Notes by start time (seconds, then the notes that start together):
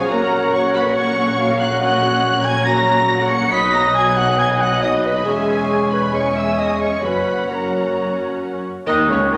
Already playing: F3 C#4 G#4 C#5 F5 G#5
0.00 C#4 G#4
0.10 A#1 A#2 F#3 A#3 C#4 F#4 A#4 F#5 A#5
0.22 C#4 A#4
0.32 A#3 F#4
0.43 C#4 A#4
0.53 A#3 F#4 C#5 C#6
0.64 C#4 A#4
0.75 A#3 F#4 B4 B5
0.86 C#4 A#4
0.96 F#3 A#3 C#4 F#4 C#5 C#6
1.07 C#4 A#4
1.17 A#3 F#4
1.29 C#4 A#4
1.39 A#3 F#4 F5
1.50 C#4 A#4
1.60 A#3 F#4 F#5 F#6
1.71 C#4 A#4
1.81 F#3 A#3 C#4 F#4 C#5 D#5 F#5 F#6
1.92 C#4 A#4
2.03 A#3 F#4
2.14 C#4 A#4
2.23 A#3 F#4 C#5
2.34 C#4 A#4
2.44 A#3 F#4 G#5 G#6
2.55 C#4 A#4
2.65 F#3 A#3 C#4 F#4 C#5 A#5 A#6
2.77 C#4 A#4
2.88 A#3 F#4
2.99 C#4 A#4
3.10 A#3 F#4 F#5
3.20 C#4 A#4
3.30 A#3 F#4 C#6 C#7
3.42 C#4 A#4
3.52 B1 B2 F#3 B3 D#4 F#4 D#5 B5 B6
3.63 D#4 B4
3.74 B3 F#4 A#5 A#6
3.85 D#4 B4
3.94 B3 F#4 G#5 G#6
4.07 D#4 B4
4.17 B3 F#4 F#5 F#6
4.28 D#4 B4
4.38 B3 F#4 D#5 G#5 G#6
4.50 D#4 B4
4.61 B3 F#4 F#5 F#6
4.72 D#4 B4
4.81 F#3 B3 D#4 F#4 D#5 D#6
4.94 D#4 B4
5.04 B3 F#4 B4 B5
5.15 D#4 B4
5.25 E1 E2 G#3 C#4 G#4 C#5 E5 G#5
5.71 G#5
5.92 B4 B5
6.12 G#3 C#4 G#4 C#5 C#6
6.35 E5 E6
6.57 D#5 D#6
6.80 C#5 C#6
7.03 F#1 F#2 F#3 C#4 F#4 B4 C#5 F#5 B5
7.50 F#3 C#4 F#4 A#4 C#5 A#5
8.87 D#2 D#3 D#4 D#5 F#6
9.09 C#2 C#3 C#4 C#5
9.31 D#2 D#3 D#4 D#5 B5